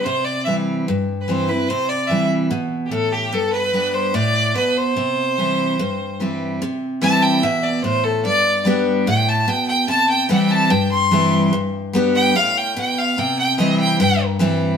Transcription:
<<
  \new Staff \with { instrumentName = "Fiddle" } { \time 4/4 \key c \major \tempo 4 = 146 c''8 d''8 e''8 r4 r16. b'32 c''8 b'8 | c''8 d''8 e''8 r4 r16. g'32 a'8 g'8 | a'8 b'4 c''8 d''4 b'8 c''8~ | c''2. r4 |
r4 a''8 g''8 e''8 d''8 c''8 a'8 | d''4 r4 g''8 a''8 g''8 g''8 | a''8 g''8 g''8 a''8 g''8 c'''4. | r4. g''8 f''8 g''8 g''8 f''8 |
g''8 g''8 ees''8 g''8 g''8 r4. | }
  \new Staff \with { instrumentName = "Steel-string acoustic guitar" } { \clef bass \time 4/4 \key c \major << { r4 <e g c' e'>4 r4 <e g c' e'>8 <c' e'>8 | r4 <e g c' e'>4 r2 | r4 <g b d' g'>4 r2 | r4 <e g c' e'>4 r4 <e g c' e'>4 |
r4 <e g c' e'>4 r2 | r4 <g b d' g'>4 r2 | r4 <e g c' e'>4 r4 <e g c' e'>4 | r4 <g b d' g'>4 r2 |
r4 <e g c' e'>4 r4 <e g c' e'>4 | } \\ { c2 g,2 | c2 b,4 a,4 | g,2 a,4 b,4 | c2 g,2 |
c2 b,4 a,4 | g,2 a,4 b,4 | c2 g,2 | g,2 a,4 b,4 |
c2 g,2 | } >> }
>>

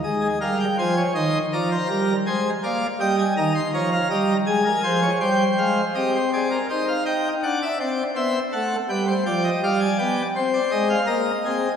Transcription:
<<
  \new Staff \with { instrumentName = "Pipe organ" } { \time 4/4 \key aes \major \tempo 4 = 82 << { ees''8 f''16 g''16 aes''8 c'''8 bes''4 aes''8 f''8 | g''16 aes''16 bes''16 c'''16 bes''4 aes''4 g''8 f''8 | \key c \minor ees''16 c''16 d''8 ees''16 f''16 g''8 fis''16 e''16 d''8 e''8 fis''8 | g''8 g''8 f''16 aes''16 g''8 c''16 d''16 ees''16 f''16 ees''4 | } \\ { r16 aes'16 bes'8 c''16 des''16 ees''8 d''16 c''16 bes'8 c''8 d''8 | ees''8 ees''8 des''16 f''16 ees''8 aes'16 bes'16 c''16 des''16 c''4 | g'8 aes'16 bes'16 c''8 ees''8 d''4 c''8 a'8 | b'16 c''16 d''16 ees''16 d''4 r4 bes'8 aes'8 | } >> }
  \new Staff \with { instrumentName = "Pipe organ" } { \clef bass \time 4/4 \key aes \major aes8 g8 f8 ees8 f8 g8 aes8 bes8 | g8 ees8 f8 g8 aes8 f8 g8 aes8 | \key c \minor c'4 ees'4 d'8 c'8 b8 a8 | g8 f8 g8 b8 c'8 aes8 bes8 c'8 | }
>>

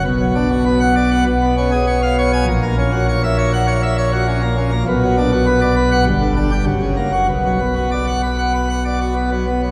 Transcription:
<<
  \new Staff \with { instrumentName = "Pipe organ" } { \time 4/4 \key b \minor \tempo 4 = 99 b,16 fis16 d'16 fis'16 b'16 fis''16 d''16 fis''16 b,16 b16 cis'16 gis'16 cis''16 eis''16 cis''16 gis''16 | ais,16 ais16 cis'16 fis'16 cis''16 e''16 cis''16 fis''16 cis''16 e''16 cis''16 fis'16 cis'16 ais16 cis'16 ais16 | b,16 fis16 d'16 fis'16 b'16 d''16 b'16 fis''16 g,16 d16 d'16 g'16 fis,16 cis16 ais16 fis'16 | b,16 fis16 b16 fis'16 d''16 fis''16 b'16 fis''16 b'16 fis''16 d''16 fis'16 b16 fis16 b16 fis16 | }
  \new Staff \with { instrumentName = "Pipe organ" } { \clef bass \time 4/4 \key b \minor b,,2 b,,2 | ais,,1 | b,,2 g,,4 fis,,4 | b,,1 | }
>>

